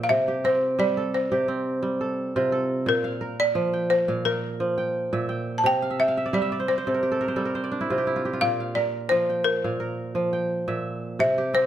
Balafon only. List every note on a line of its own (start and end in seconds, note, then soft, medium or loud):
0.04 0.10 F5 medium
0.09 0.45 E5 medium
0.45 0.77 C5 medium
0.80 1.12 D5 medium
1.14 2.49 C5 medium
2.89 3.37 A#4 medium
3.40 3.92 D5 loud
3.90 4.23 C5 medium
4.25 5.25 A#4 medium
5.58 5.64 A5 medium
5.66 6.01 G5 loud
6.00 6.31 E5 medium
6.34 6.69 D5 medium
6.68 7.68 C5 medium
8.41 8.77 F5 loud
8.75 9.11 D5 medium
9.09 9.25 C5 medium
9.44 10.80 A#4 medium
11.20 11.55 E5 medium
11.55 11.66 C5 medium